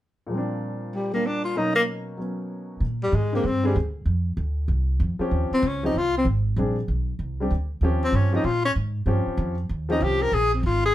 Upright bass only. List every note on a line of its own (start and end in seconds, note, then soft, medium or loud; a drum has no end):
2.80 3.11 A#2 medium
3.12 3.43 G#2 medium
3.44 3.74 G2 medium
3.75 4.05 D2 medium
4.05 4.36 F2 medium
4.37 4.68 D2 medium
4.68 4.99 C2 medium
5.00 5.18 F2 medium
5.19 muted upright bass stroke soft
5.31 5.50 D#2 medium
5.51 muted upright bass stroke soft
5.62 5.93 C#2 medium
5.94 6.24 C2 medium
6.25 6.55 G#1 medium
6.56 6.87 A#1 medium
6.88 7.18 B1 medium
7.19 7.49 C2 medium
7.50 7.80 D2 medium
7.81 8.12 D#2 medium
8.12 8.43 G2 medium
8.44 8.74 A#2 medium
8.76 9.05 G#2 medium
9.06 9.25 G2 medium
9.26 muted upright bass stroke soft
9.37 9.68 F2 medium
9.69 10.00 D#2 medium
10.00 10.31 C2 medium
10.32 10.62 A#1 medium
10.63 10.93 G#1 medium